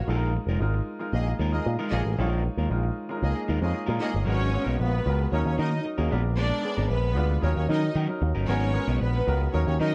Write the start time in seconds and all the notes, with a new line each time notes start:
0.08 A#1 G#3 D#4 F4 A4 A#4
0.16 A#4
0.36 muted clean electric guitar stroke
0.47 F1 G#3 D#4 F4 A#4
0.60 G#1 G#3 D#4 F4 A#4, muted clean electric guitar stroke
0.74 muted clean electric guitar stroke
0.99 G#3 D#4 F4 A#4, muted clean electric guitar stroke
1.13 A#1 A#3 G#4 D#5
1.27 muted clean electric guitar stroke
1.39 D#2 G#3 D#4 F4 A#4
1.52 G#3 A#3 D#4 F4 G#4 A#4 D#5, muted clean electric guitar stroke
1.66 A#2, muted clean electric guitar stroke
1.79 G#3 D#4 F4 A#4
1.91 A#1 G#3 A#3 D#4 F4 G#4 C#5 D#5
2.05 A1, muted clean electric guitar stroke
2.18 A#1 G#3 D#4 F4 A#4 C#5
2.45 muted clean electric guitar stroke
2.57 D#2 G#3 D#4 F4 A#4
2.70 A#1 G#3 D#4 F4 A#4, muted clean electric guitar stroke
2.83 muted clean electric guitar stroke
3.09 G#3 C#4 F4 A#4, muted clean electric guitar stroke
3.16 D#4
3.22 C#2 A#3 G#4 D#5
3.36 muted clean electric guitar stroke
3.48 D#2 G#3 D#4 F4 A#4
3.61 F2 G#3 A#3 D#4 F4 G#4 C#5 D#5, muted clean electric guitar stroke
3.74 muted clean electric guitar stroke
3.86 A#2 G#3 D#4 F4 A#4
3.99 G#3 A#3 D#4 F4 G#4 C#5 D#5
4.11 G1, muted clean electric guitar stroke
4.25 G#1 F#3 G#3 B3 C#4 D#4 F#4 A#4 C#5
4.52 G#3 A#3 F#4 C#5, muted clean electric guitar stroke
4.60 B3 A#4
4.64 B1 F#3 B3 D#4
4.79 A#1 B3 B4, muted clean electric guitar stroke
4.92 muted clean electric guitar stroke
5.06 C#2 G#3 B3 F#4 A#4
5.19 muted clean electric guitar stroke
5.32 D#2 F#3 C#4 D#4 A#4 C#5
5.44 D#2 C#4 C#5, muted clean electric guitar stroke
5.58 D#3 F#3 A#3 C#4 D#4 F#4 A#4 D#5
5.71 muted clean electric guitar stroke
5.85 muted clean electric guitar stroke
5.97 D#2 F#3 A#3 C#4 D#4 F#4 G#4 A#4
6.11 A#1 G#3 B3 D4 A#4 B4
6.24 muted clean electric guitar stroke
6.37 G#3 B3 D4 A#4 D5
6.63 G#3 B3 C#4 G#4, muted clean electric guitar stroke
6.71 D4
6.77 G#1 G#3 B3 D4 A#4
6.90 A#1 B3 B4, muted clean electric guitar stroke
7.04 muted clean electric guitar stroke
7.15 D2 G#3 B3 D4 F4
7.31 muted clean electric guitar stroke
7.42 D#2 F#3 C#4 D#4 A#4 C#5
7.56 D#2 C#4 C#5, muted clean electric guitar stroke
7.68 D#3 F#3 C#4 D#4 A#4 D#5
7.83 muted clean electric guitar stroke
7.95 D#3 F#3 C#4 D#4 A#4
8.08 F#3 C#4 D#4 A#4, muted clean electric guitar stroke
8.22 D#2, muted clean electric guitar stroke
8.35 G1 F#3 C#4 D#4 A#4
8.48 G#1 F#3 G#3 B3 C#4 D#4 F#4 A#4 C#5
8.74 G#3 B3 F#4 A#4, muted clean electric guitar stroke
8.88 B1 F#3 B3 D#4 A#4
9.00 A#1 B3 B4, muted clean electric guitar stroke
9.16 muted clean electric guitar stroke
9.27 C#2 G#3 B3 F#4 A#4
9.41 muted clean electric guitar stroke
9.53 D#2 F#3 C#4 D#4 A#4 C#5
9.67 D#2 C#4 C#5, muted clean electric guitar stroke
9.79 D#3 F#3 C#4 D#4 A#4 D#5